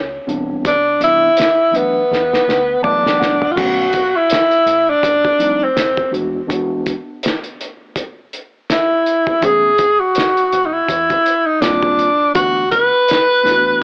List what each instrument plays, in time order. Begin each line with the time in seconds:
Already playing: fingered electric bass C#2, tenor saxophone C#4
0.27 fingered electric bass B1, tine electric piano E3 G3 B3 C4 D4, closed hi-hat
0.65 fingered electric bass C2, tenor saxophone D4, kick, closed hi-hat
1.00 tine electric piano C3 E3 G3 B3 D4, closed hi-hat
1.04 tenor saxophone E4
1.37 snare, closed hi-hat
1.71 tine electric piano E3 F#3 A3 B3 D4, closed hi-hat
1.77 tenor saxophone B3
2.11 fingered electric bass E2, snare
2.33 snare
2.48 fingered electric bass D2, snare
2.82 tine electric piano E3 F#3 A3 B3 D4 A5, tenor saxophone D4, mid tom
3.06 snare
3.20 fingered electric bass A#1, tine electric piano F#5, snare
3.42 floor tom
3.52 tine electric piano D3 F#3 A3, tenor saxophone F4
3.57 fingered electric bass B1, tine electric piano B3 C#4, tenor saxophone F#4, kick, crash
3.93 kick, closed hi-hat
4.16 tenor saxophone E4
4.30 snare, closed hi-hat
4.51 closed hi-hat
4.66 fingered electric bass A1, closed hi-hat
4.90 tenor saxophone D4
5.03 fingered electric bass F#1, kick, closed hi-hat
5.25 kick
5.39 tine electric piano F3 G3 A3 C4 D#4, closed hi-hat
5.63 tenor saxophone C4
5.76 fingered electric bass F1, snare, closed hi-hat
5.97 kick
6.11 fingered electric bass D#1, tine electric piano E3 G#3 B3 D4 F#4, closed hi-hat
6.47 tine electric piano E3 G#3 B3 D4 F#4, kick, closed hi-hat
6.86 kick, closed hi-hat
7.23 snare, closed hi-hat
7.44 closed hi-hat
7.61 closed hi-hat
7.96 kick, closed hi-hat
8.33 closed hi-hat
8.70 tenor saxophone E4, snare, closed hi-hat
9.06 closed hi-hat
9.27 kick
9.41 fingered electric bass E1, tine electric piano E3 A3 B3 C#4 G#4, tenor saxophone G#4, kick, closed hi-hat
9.78 kick, closed hi-hat
10.00 tenor saxophone F#4
10.15 snare, closed hi-hat
10.37 closed hi-hat
10.52 fingered electric bass E1, closed hi-hat
10.66 tenor saxophone D#4
10.73 tenor saxophone E4
10.88 fingered electric bass E2, kick, closed hi-hat
11.10 kick, closed hi-hat
11.26 closed hi-hat
11.46 tenor saxophone D#4
11.61 fingered electric bass D#2, tine electric piano D#3 G3 A#3 C4 F4, tenor saxophone D4, snare, closed hi-hat
11.83 kick
11.99 fingered electric bass C#2, closed hi-hat
12.34 fingered electric bass D2, tine electric piano E3 A3 B3 D4 F#4, tenor saxophone F#4, kick, closed hi-hat
12.71 tenor saxophone B4, kick, closed hi-hat
13.08 snare, closed hi-hat
13.43 fingered electric bass E2, tine electric piano E3 A3 B3 D4 E4, closed hi-hat
13.48 tine electric piano F#4, snare